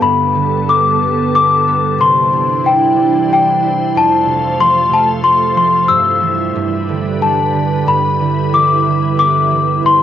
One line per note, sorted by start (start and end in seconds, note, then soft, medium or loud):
0.00 2.05 G2 medium
0.00 1.98 G3 medium
0.00 0.68 B3 medium
0.00 1.98 B3 medium
0.00 1.97 A4 medium
0.00 1.19 D5 medium
0.00 1.18 F5 medium
0.00 1.24 G5 medium
0.00 0.71 B5 medium
0.35 1.00 D3 soft
0.69 1.67 B3 soft
0.69 1.34 D6 medium
1.01 2.05 D3 soft
1.35 4.14 D4 medium
1.35 2.02 D6 medium
1.67 2.04 B3 medium
1.98 3.98 C3 medium
1.98 3.92 E3 medium
1.98 3.92 D4 medium
1.98 6.51 C5 medium
1.98 2.67 C6 medium
2.33 2.95 G3 soft
2.64 3.62 E4 soft
2.64 3.32 G5 medium
2.96 3.98 G3 soft
3.29 5.64 G4 medium
3.29 3.97 G5 medium
3.63 4.01 E4 medium
3.94 5.94 F2 medium
3.94 5.87 A3 medium
3.94 5.87 F4 medium
3.94 4.62 A5 medium
4.26 4.88 C3 soft
4.58 4.95 F3 soft
4.58 4.93 C6 medium
4.90 5.94 C3 soft
4.90 5.07 A5 medium
5.21 8.54 A3 soft
5.21 5.56 C6 medium
5.55 5.94 F3 soft
5.55 5.90 C6 medium
5.88 6.54 G2 medium
5.88 9.80 G3 medium
5.88 7.25 E6 medium
6.21 6.59 E3 soft
6.54 7.85 G2 medium
6.54 7.86 D4 medium
6.54 9.80 B4 medium
6.89 7.53 D3 soft
7.21 7.59 G3 soft
7.21 7.90 A5 medium
7.54 7.92 D3 soft
7.87 9.82 G2 medium
7.87 9.82 E4 medium
7.87 8.56 B5 medium
8.21 8.85 D3 medium
8.53 8.91 E3 soft
8.53 9.18 D6 medium
8.86 9.89 D3 soft
9.17 10.03 B3 medium
9.17 9.80 D6 medium
9.51 9.89 E3 medium
9.83 10.03 G2 medium
9.83 10.03 E3 medium
9.83 10.03 D4 medium
9.83 10.03 C5 medium
9.83 10.03 C6 medium